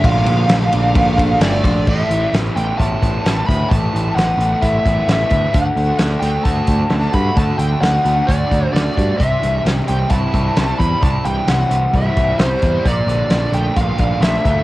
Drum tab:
CC |--------|x-------|--------|--------|
RD |xxxxxxxx|--------|--------|--------|
HH |--------|-xxxxxxx|xxxxxxxx|xxxxxxxx|
SD |--o---o-|--o---o-|--o---o-|--o---o-|
BD |o---oo-o|o---oo-o|o---oo-o|o---oo-o|

CC |--------|--------|--------|--------|
RD |--------|--------|--------|--------|
HH |xxxxxxxx|xxxxxxxx|xxxxxxxx|xxxxxxxx|
SD |--o---o-|--o---o-|--o---o-|--o---o-|
BD |o---oo-o|o---oo-o|o---oo-o|o---oo-o|